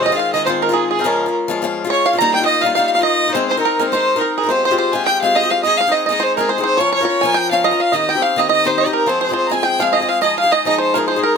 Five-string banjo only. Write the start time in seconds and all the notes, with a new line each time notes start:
0.06 D#5
0.19 F5
0.34 D#5
0.46 C5
0.62 A#4
0.73 G#4
0.91 G#4
1.01 A#4
1.90 C#5
2.06 F5
2.18 A#5
2.34 G5
2.46 D#5
2.61 F5
2.75 F5
2.95 F5
3.03 D#5
3.35 C5
3.51 C5
3.65 A#4
3.80 A#4
3.93 C5
4.21 A#4
4.38 G#4
4.49 C5
4.65 C5
4.78 C5
5.07 G5
5.36 D#5
5.51 F5
5.63 D#5
5.81 F5
5.92 D#5
6.06 D#5
6.20 C5
6.37 A#4
6.49 C5
6.64 C5
6.77 C#5
6.92 C#5
7.05 C#5
7.21 G#5
7.34 G5
7.64 D#5
7.80 F5
7.92 D#5
8.09 G5
8.22 F5
8.39 D#5
8.49 D#5
8.66 C5
8.78 D#5
8.93 A#4
9.07 C5
9.21 C5
9.33 C5
9.52 G#5
9.63 G5
9.80 F5
9.93 D#5
10.09 F5
10.22 D#5
10.38 F5
10.52 D#5
10.66 D#5
10.78 C5
10.94 A#4
11.08 C5
11.23 A#4